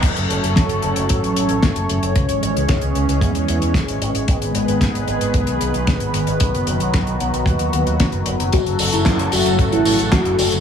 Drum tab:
CC |x---------------|----------------|----------------|----------------|
HH |xxxxxxxxxxxxxxxx|xxxxxxxxxxxxxxxx|xxxxxxxxxxxxxxxx|xxxxxxxxxxxxxxxx|
TB |----------------|----------------|----------------|----------------|
CP |----------------|----------------|----------------|----------------|
SD |----o-------o---|----o-------o---|----o-------o---|----o-------o---|
BD |o---o---o---o---|o---o---o---o---|o---o---o---o---|o---o---o---o---|

CC |----------------|
HH |xxoxxxoxxxoxxxox|
TB |x-xx--xxx-xx--xx|
CP |----x-------x---|
SD |----o-------o---|
BD |o---o---o---o---|